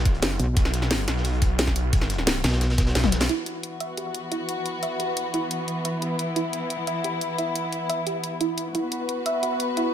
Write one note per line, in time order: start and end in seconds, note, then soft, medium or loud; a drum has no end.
0.00 0.21 B1 loud
0.05 kick loud
0.05 snare soft
0.05 closed hi-hat medium
0.14 closed hi-hat medium
0.22 0.38 F#1 loud
0.22 snare loud
0.22 closed hi-hat medium
0.31 snare soft
0.39 0.55 B1 loud
0.39 closed hi-hat medium
0.57 1.06 B1 loud
0.57 kick loud
0.57 closed hi-hat medium
0.65 snare soft
0.73 snare soft
0.73 closed hi-hat medium
0.73 closed hi-hat loud
0.82 snare soft
0.91 snare loud
0.91 closed hi-hat medium
0.99 snare soft
1.07 2.43 B1 loud
1.07 snare soft
1.07 closed hi-hat medium
1.17 snare medium
1.24 closed hi-hat medium
1.33 closed hi-hat soft
1.42 kick loud
1.42 closed hi-hat medium
1.58 snare loud
1.58 closed hi-hat loud
1.58 closed hi-hat medium
1.67 kick medium
1.67 snare soft
1.76 closed hi-hat loud
1.76 closed hi-hat medium
1.93 kick loud
1.93 closed hi-hat medium
2.01 snare medium
2.01 snare soft
2.10 closed hi-hat loud
2.10 closed hi-hat medium
2.18 snare soft
2.27 snare loud
2.27 closed hi-hat medium
2.36 snare soft
2.44 2.94 B1 loud
2.44 snare loud
2.44 snare soft
2.44 closed hi-hat medium
2.44 open hi-hat medium
2.49 snare medium
2.49 closed hi-hat medium
2.52 snare loud
2.52 closed hi-hat medium
2.61 snare medium
2.61 closed hi-hat medium
2.70 snare loud
2.70 closed hi-hat medium
2.78 kick loud
2.78 snare loud
2.78 closed hi-hat medium
2.87 snare loud
2.87 closed hi-hat medium
2.95 3.28 B1 loud
2.95 snare medium
2.95 snare loud
2.95 closed hi-hat medium
3.03 kick medium
3.03 snare loud
3.03 closed hi-hat medium
3.03 high tom medium
3.12 snare loud
3.12 closed hi-hat medium
3.12 closed hi-hat loud
3.20 snare loud
3.20 snare medium
3.20 closed hi-hat medium
3.29 8.71 E3 medium
3.29 8.71 B3 medium
3.29 3.36 E4 medium
3.29 5.99 F#4 medium
3.29 closed hi-hat medium
3.46 closed hi-hat medium
3.63 closed hi-hat medium
3.80 3.91 E5 loud
3.80 closed hi-hat medium
3.97 4.05 G4 medium
3.97 closed hi-hat medium
4.15 closed hi-hat medium
4.32 4.39 E4 medium
4.32 closed hi-hat medium
4.49 closed hi-hat loud
4.66 closed hi-hat medium
4.83 4.93 E5 loud
4.83 closed hi-hat medium
5.00 5.07 G4 medium
5.00 closed hi-hat medium
5.17 closed hi-hat medium
5.34 5.41 E4 medium
5.34 closed hi-hat medium
5.51 closed hi-hat medium
5.68 closed hi-hat medium
5.85 5.96 E5 loud
5.85 closed hi-hat medium
6.02 8.72 E4 medium
6.02 6.09 G4 medium
6.02 closed hi-hat medium
6.19 closed hi-hat medium
6.36 6.43 E4 medium
6.36 closed hi-hat medium
6.53 closed hi-hat medium
6.70 closed hi-hat medium
6.87 6.98 E5 loud
6.87 closed hi-hat medium
7.04 7.11 G4 medium
7.04 closed hi-hat medium
7.21 closed hi-hat medium
7.38 7.45 E4 loud
7.38 closed hi-hat medium
7.55 closed hi-hat medium
7.73 closed hi-hat medium
7.90 8.00 E5 loud
7.90 closed hi-hat medium
8.07 8.14 G4 medium
8.07 closed hi-hat medium
8.24 closed hi-hat medium
8.41 8.45 E4 loud
8.41 closed hi-hat medium
8.58 closed hi-hat medium
8.75 9.94 B3 medium
8.75 8.82 E4 medium
8.75 9.94 F#4 medium
8.75 9.94 B4 medium
8.75 closed hi-hat medium
8.92 closed hi-hat medium
9.09 closed hi-hat medium
9.26 9.36 E5 loud
9.26 closed hi-hat medium
9.43 9.50 F#4 medium
9.43 closed hi-hat medium
9.60 closed hi-hat medium
9.77 9.84 E4 loud
9.77 closed hi-hat medium